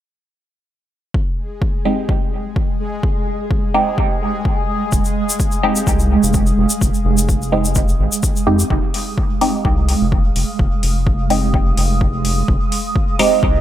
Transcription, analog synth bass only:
4.92 F1
5.87 C2
6.23 F1
6.58 F1
6.81 F1
7.05 F1
8.00 G#1
8.47 F2
8.70 F1
9.65 C2
10.01 F1
10.36 F1
10.59 F1
10.83 F1
11.77 F1
12.48 F1
13.43 C2

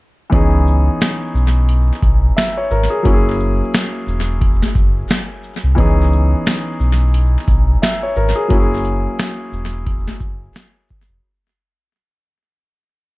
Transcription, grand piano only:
0.30 E3 B3 C#4 D#4
0.35 G#4
2.36 E5
2.57 C#5
2.71 A#4
2.90 G#4
3.02 F#3 A#3 C#4 E4
3.07 F#4
3.14 G#4
5.75 E3 B3 C#4 D#4
5.80 G#4
7.82 E5
8.03 C#5
8.17 A#4
8.35 G#4
8.48 F#3 A#3 C#4 E4
8.53 F#4
8.60 G#4

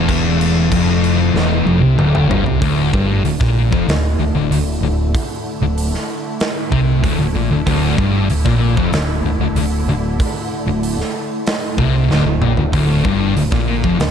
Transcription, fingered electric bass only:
Already playing: E1
0.72 F1
1.34 E1
1.66 F1
1.81 C2
1.98 D1
2.29 G1
2.45 C2
2.62 D1
2.93 G1
3.24 D1
3.41 A#1
3.72 F1
3.88 D1
4.19 D1
4.35 D1
4.52 D1
4.83 D1
5.62 D1
6.72 C2
7.04 D1
7.19 D1
7.35 A#1
7.50 D1
7.66 D1
7.98 G1
8.30 D1
8.46 A#1
8.77 F1
8.93 D1
9.24 D1
9.39 D1
9.55 D1
9.87 D1
10.67 D1
11.78 C2
12.10 D1
12.25 D1
12.42 A#1
12.57 D1
12.73 D1
13.05 G1
13.37 D1
13.52 A#1
13.84 F1
14.00 D1

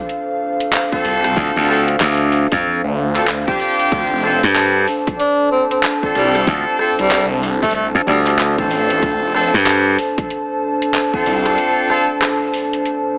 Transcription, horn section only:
0.92 C4 D4 F4 A4
1.68 C4 D4 F4 A4
3.16 C4 D4 F4 A4
3.48 C4 D4 F4 G4
4.24 C4 D4 F4 A4
6.03 C4 D4 F4 A4
6.79 C4 D4 F4 A4
8.58 C4 D4 F4 A4
9.34 C4 D4 F4 A4
11.13 C4 D4 F4 A4
11.90 C4 D4 F4 A4

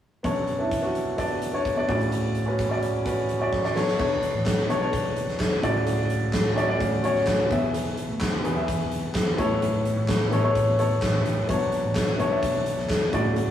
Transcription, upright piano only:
0.23 B1 F#2 B3 D4 C#5
0.58 B3 D4 E4
0.81 B3 D4 F#4
1.17 B3 D4 D5
1.52 B3 D4 C#5
1.76 B3 D4 D5
1.87 D2 A2 C#3 F#4 D5
2.46 C#4 F#4 B4
2.69 C#4 F#4 D5
3.05 C#4 F#4 B4
3.40 C#4 F#4 D5
3.63 C#4 F#4 D5
3.75 B3 D4 C#5
3.98 B3 D4 C#5
4.68 B3 D4 C#5
4.80 B3 D4 C#5
5.62 A2 C#3 F#4 D5
6.56 C#4 F#4 D5
6.68 C#4 F#4 D5
7.03 C#4 F#4 C#5
7.50 B2 B3 G#4 E5
8.43 B3 G#4 B4
8.55 B3 G#4 E5
9.37 A2 E3 B3 A4 C#5
10.31 B3 A4 C#5
10.43 B3 A4 C#5
10.78 B3 A4 C#5
11.48 B2 F#3 B3 D4 C#5
12.18 B3 D4 C#5
12.30 B3 D4 E5
13.12 A2 C#3 F#4 D5

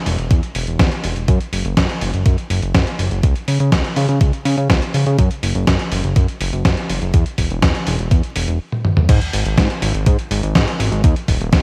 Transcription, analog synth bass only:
0.06 E1
0.18 E1
0.31 E2
0.55 E1
0.67 E1
0.80 E2
1.04 E1
1.16 E1
1.28 F#2
1.53 F#1
1.65 F#1
1.77 F#2
2.01 F#1
2.14 F#1
2.26 F#2
2.50 F#1
2.62 F#1
2.75 F#2
2.99 F#1
3.11 F#1
3.23 C#2
3.48 C#3
3.60 C#3
3.72 C#2
3.96 C#3
4.09 C#3
4.21 C#2
4.45 C#3
4.57 C#3
4.70 C#2
4.94 C#3
5.06 C#3
5.18 F#2
5.43 F#1
5.55 F#1
5.67 F#2
5.92 F#1
6.04 F#1
6.16 F#2
6.41 F#1
6.53 F#1
6.65 F#2
6.89 F#1
7.02 F#1
7.14 E2
7.38 E1
7.51 E1
7.63 E2
7.87 E1
7.99 E1
8.11 E2
8.36 E1
8.48 E1
9.09 G#2
9.33 G#1
9.46 G#1
9.58 G#2
9.82 G#1
9.94 G#1
10.06 G#2
10.31 G#1
10.43 G#1
10.55 G#2
10.79 G#1
10.92 G#1
11.04 D#2
11.28 D#1
11.40 D#1
11.53 D#2

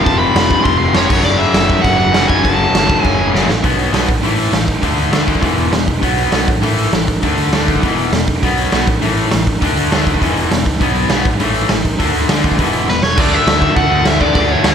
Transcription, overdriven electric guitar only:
0.04 A5
0.19 B5
0.64 C6
0.78 C6
0.95 C#5
1.24 D5
1.38 E5
1.81 F#5
1.97 F#5
2.28 G#5
2.43 A5
3.01 G#5
12.90 B4
13.03 C#5
13.19 D5
13.33 E5
13.76 F#5
13.91 F#5
14.07 E5
14.21 D5
14.35 D5
14.51 C#5
14.66 B4

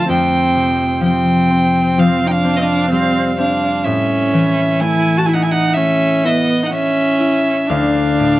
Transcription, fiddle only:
0.10 G5
1.03 G5
1.99 F5
2.27 G5
2.31 F5
2.57 D#5
2.61 F5
2.92 F5
3.39 F5
3.84 E5
4.80 G#5
5.18 A5
5.26 G#5
5.34 F#5
5.43 G#5
5.51 F#5
5.73 E5
6.25 D#5
6.65 F#5
6.72 E5
7.69 F5

